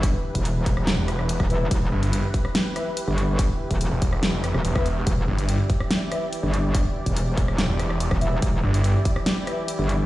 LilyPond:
<<
  \new Staff \with { instrumentName = "Brass ensemble" } { \time 4/4 \key e \minor \tempo 4 = 143 r2. r8 <e' b' e''>16 r16 | r2 r8 <e' b' e''>16 r4 r16 | r2. r16 <e' b' e''>16 r8 | r2 r8 <e' b' e''>16 r4 r16 |
r2. r8 <e' b' e''>16 r16 | r2 r8 <e' b' e''>16 r4 r16 | }
  \new Staff \with { instrumentName = "Supersaw synth" } { \time 4/4 \key e \minor << { b'1~ | b'1~ | b'1 | d''1~ |
d''1~ | d''1 | } \\ { <e e' g'>1~ | <e e' g'>1~ | <e e' g'>1~ | <e e' g'>1~ |
<e e' g'>1~ | <e e' g'>1 | } >> }
  \new Staff \with { instrumentName = "Detuned saw bass" } { \clef bass \time 4/4 \key e \minor r2 r16 e,,4 r8. | r8 g,,8. r2 r8. | r4 r16 e,,4 f,,8 r16 e,,4 | r8 g,,8. r2 r8. |
r2 r16 e,,4 r8. | r8 g,,8. r2 r8. | }
  \new Staff \with { instrumentName = "Wobble bass" } { \clef bass \time 4/4 \key e \minor g,,16 r8 e,,4. r4 e,,8. | e,,8 r2 r8. g,,8.~ | g,,16 r8 e,,16 e,,16 r4. e,,16 r4 | e,,8 r2 r8. g,,8.~ |
g,,16 r8 e,,4. r4 e,,8. | e,,8 r2 r8. g,,8. | }
  \new DrumStaff \with { instrumentName = "Drums" } \drummode { \time 4/4 <hh bd>8. <hh bd>16 hh8 <hh bd>16 ss16 <hh sn>8 <hh ss>16 ss16 hh16 <bd ss>16 hh8 | <hh bd>8. hh16 hh8 <hh bd>16 ss16 <hh sn>8 <hh ss>8 hh8 hh8 | <hh bd>8. <hh bd>16 hh8 <hh bd>16 ss16 <hh sn>8 <hh ss>16 ss16 hh16 <bd ss>16 hh8 | <hh bd>8. hh16 hh8 <hh bd>16 ss16 <hh sn>8 <hh ss>8 hh8 hh8 |
<hh bd>8. <hh bd>16 hh8 <hh bd>16 ss16 <hh sn>8 <hh ss>16 ss16 hh16 <bd ss>16 hh8 | <hh bd>8. hh16 hh8 <hh bd>16 ss16 <hh sn>8 <hh ss>8 hh8 hh8 | }
>>